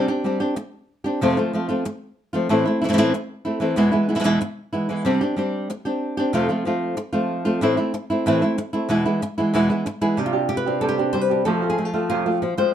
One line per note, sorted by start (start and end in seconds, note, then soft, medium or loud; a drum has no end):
0.08 0.24 C4 soft
0.08 0.24 D4 medium
0.08 0.24 G4 medium
0.24 0.40 G3 soft
0.24 0.40 C4 medium
0.24 0.40 D4 medium
0.24 0.39 G4 medium
0.40 0.56 C4 soft
0.40 0.55 D4 soft
0.40 0.56 G4 medium
0.56 muted nylon-string guitar stroke medium
1.04 1.21 C4 soft
1.04 1.21 D4 medium
1.04 1.20 G4 medium
1.21 1.37 F2 medium
1.21 1.37 C3 medium
1.21 1.37 F3 medium
1.21 1.37 A3 medium
1.21 1.37 C4 medium
1.21 1.36 F4 medium
1.37 1.52 F3 soft
1.37 1.53 A3 soft
1.37 1.53 C4 soft
1.37 1.53 F4 medium
1.53 1.69 F3 soft
1.53 1.69 A3 medium
1.53 1.68 C4 soft
1.53 1.67 F4 medium
1.69 1.84 F3 soft
1.69 1.85 A3 soft
1.69 1.85 C4 medium
1.69 1.84 F4 medium
1.85 muted nylon-string guitar stroke medium
2.33 2.50 F3 soft
2.33 2.49 A3 medium
2.33 2.49 C4 medium
2.33 2.49 F4 medium
2.49 2.65 A2 medium
2.49 2.65 E3 medium
2.49 2.65 A3 medium
2.49 2.66 C4 medium
2.49 2.64 E4 medium
2.65 2.82 A3 soft
2.65 2.81 C4 medium
2.65 2.80 E4 medium
2.81 2.87 E3 medium
2.81 2.85 A3 soft
2.81 2.85 C4 soft
2.81 2.84 E4 medium
2.81 2.88 E4 medium
2.89 2.92 E3 medium
2.89 2.93 A3 medium
2.89 2.93 C4 medium
2.89 2.93 E4 medium
2.93 2.97 E3 medium
2.93 2.97 A3 medium
2.93 2.97 C4 medium
2.93 2.97 E4 medium
2.98 3.13 A2 medium
2.98 3.13 E3 medium
2.98 3.13 A3 medium
2.98 3.14 C4 medium
2.98 3.14 E4 loud
3.14 muted nylon-string guitar stroke medium
3.45 3.60 A3 soft
3.45 3.60 C4 soft
3.45 3.61 E4 medium
3.60 3.76 E3 medium
3.60 3.77 A3 medium
3.60 3.77 C4 medium
3.60 3.77 E4 medium
3.76 3.92 E2 medium
3.76 3.93 B2 medium
3.76 3.92 E3 medium
3.76 3.92 G#3 medium
3.76 3.91 B3 medium
3.76 3.90 E4 medium
3.92 4.09 E3 soft
3.92 4.09 G#3 medium
3.92 4.08 B3 medium
3.92 4.07 E4 medium
4.09 4.14 E3 soft
4.09 4.14 G#3 soft
4.09 4.15 B3 soft
4.09 4.15 E4 soft
4.15 4.18 B2 soft
4.15 4.19 E3 medium
4.15 4.19 G#3 medium
4.15 4.19 B3 medium
4.15 4.20 E4 medium
4.20 4.23 B2 medium
4.20 4.23 E3 medium
4.20 4.24 G#3 medium
4.20 4.24 B3 medium
4.20 4.24 E4 medium
4.24 4.39 E2 medium
4.24 4.40 B2 medium
4.24 4.40 E3 medium
4.24 4.40 G#3 medium
4.24 4.40 B3 medium
4.24 4.40 E4 medium
4.41 muted nylon-string guitar stroke medium
4.73 4.88 E3 soft
4.73 4.88 G#3 soft
4.73 4.89 B3 soft
4.73 4.89 E4 medium
4.89 5.05 E3 medium
4.89 5.05 G#3 medium
4.89 5.06 B3 medium
4.89 5.06 E4 medium
5.05 5.21 C3 medium
5.05 5.21 G3 medium
5.05 5.21 C4 medium
5.05 5.21 D4 medium
5.05 5.20 G4 medium
5.21 5.36 C4 soft
5.21 5.36 D4 medium
5.21 5.37 G4 medium
5.36 5.69 G3 medium
5.36 5.69 C4 medium
5.36 5.69 D4 medium
5.36 5.69 G4 medium
5.70 muted nylon-string guitar stroke medium
5.85 6.18 C4 soft
5.85 6.17 D4 soft
5.85 6.16 G4 soft
6.17 6.33 C4 soft
6.17 6.34 D4 medium
6.17 6.33 G4 medium
6.33 6.49 F2 medium
6.33 6.49 C3 medium
6.33 6.49 F3 medium
6.33 6.49 A3 medium
6.33 6.49 C4 medium
6.33 6.48 F4 medium
6.49 6.64 F3 soft
6.49 6.65 A3 soft
6.49 6.65 C4 soft
6.49 6.65 F4 medium
6.65 6.96 F3 medium
6.65 6.96 A3 medium
6.65 6.97 C4 medium
6.65 6.96 F4 medium
6.97 muted nylon-string guitar stroke medium
7.13 7.45 F3 soft
7.13 7.45 A3 soft
7.13 7.44 C4 soft
7.13 7.44 F4 medium
7.45 7.62 F3 soft
7.45 7.61 A3 medium
7.45 7.61 C4 medium
7.45 7.61 F4 medium
7.61 7.77 A2 medium
7.61 7.78 E3 medium
7.61 7.78 A3 medium
7.61 7.77 C4 medium
7.61 7.76 E4 medium
7.77 7.93 A3 soft
7.77 7.93 C4 medium
7.77 7.93 E4 soft
7.94 muted nylon-string guitar stroke medium
8.10 8.25 A3 soft
8.10 8.26 C4 soft
8.10 8.25 E4 medium
8.26 8.41 A2 medium
8.26 8.42 E3 medium
8.26 8.42 A3 medium
8.26 8.42 C4 medium
8.26 8.41 E4 loud
8.42 8.57 A3 soft
8.42 8.57 C4 medium
8.42 8.57 E4 medium
8.58 muted nylon-string guitar stroke medium
8.73 8.89 A3 soft
8.73 8.89 C4 medium
8.73 8.89 E4 medium
8.89 9.05 E2 medium
8.89 9.05 B2 medium
8.89 9.05 E3 medium
8.89 9.05 G#3 medium
8.89 9.05 B3 medium
8.89 9.04 E4 medium
9.06 9.21 E3 soft
9.06 9.21 G#3 soft
9.06 9.22 B3 medium
9.06 9.21 E4 medium
9.22 muted nylon-string guitar stroke medium
9.38 9.53 E3 soft
9.38 9.53 G#3 soft
9.38 9.54 B3 soft
9.38 9.53 E4 medium
9.54 9.69 E2 medium
9.54 9.69 B2 medium
9.54 9.70 E3 medium
9.54 9.70 G#3 medium
9.54 9.69 B3 medium
9.54 9.68 E4 medium
9.70 9.85 E3 soft
9.70 9.86 G#3 soft
9.70 9.86 B3 medium
9.70 9.85 E4 medium
9.86 muted nylon-string guitar stroke medium
10.01 10.18 E3 soft
10.01 10.18 G#3 medium
10.01 10.17 B3 medium
10.01 10.17 E4 medium
10.01 10.18 G#4 medium
10.17 10.33 C3 medium
10.17 11.44 C3 medium
10.17 10.33 G3 medium
10.17 10.33 C4 medium
10.17 10.32 D4 medium
10.17 10.48 G4 medium
10.17 10.32 G4 medium
10.26 10.82 F4 medium
10.33 10.49 C4 soft
10.33 10.49 D4 soft
10.33 10.49 G4 soft
10.49 10.81 G4 medium
10.49 muted nylon-string guitar stroke soft
10.57 11.12 B4 medium
10.66 11.46 C4 medium
10.66 10.81 C4 soft
10.66 10.81 D4 soft
10.66 10.81 G4 soft
10.81 10.97 C3 medium
10.81 10.98 G3 medium
10.81 10.98 C4 medium
10.81 10.98 D4 medium
10.81 10.97 G4 medium
10.81 10.88 A4 medium
10.89 11.45 G4 medium
10.98 11.13 C4 soft
10.98 11.14 D4 soft
10.98 11.30 D4 soft
10.98 11.13 G4 soft
11.13 11.44 G3 medium
11.13 11.21 C5 medium
11.13 muted nylon-string guitar stroke medium
11.21 11.46 B4 medium
11.30 11.46 C4 soft
11.30 11.46 D4 soft
11.30 11.45 D4 soft
11.30 11.45 G4 soft
11.45 11.61 F2 medium
11.45 11.62 C3 medium
11.45 12.41 F3 medium
11.45 11.62 F3 medium
11.45 11.78 A3 soft
11.45 11.62 A3 medium
11.45 11.61 C4 medium
11.45 11.61 F4 medium
11.45 11.69 A4 medium
11.62 11.77 F3 soft
11.62 11.77 A3 soft
11.62 11.77 C4 soft
11.62 11.77 F4 soft
11.70 11.85 G#4 medium
11.78 11.93 A3 soft
11.78 muted nylon-string guitar stroke soft
11.85 12.08 F4 medium
11.94 12.09 F3 soft
11.94 12.25 A3 medium
11.94 12.10 A3 soft
11.94 12.10 C4 soft
11.94 12.10 F4 soft
12.10 12.26 F2 medium
12.10 12.26 C3 medium
12.10 12.26 F3 medium
12.10 12.26 A3 medium
12.10 12.25 C4 medium
12.10 12.74 F4 medium
12.10 12.25 F4 medium
12.26 12.42 F3 soft
12.26 12.42 A3 soft
12.26 12.42 C4 soft
12.26 12.41 F4 soft
12.42 12.57 F3 medium
12.42 muted nylon-string guitar stroke medium
12.57 12.73 F3 soft
12.57 12.74 G#3 medium
12.57 12.73 A3 soft
12.57 12.74 C4 soft
12.57 12.73 F4 soft
12.57 12.73 C5 medium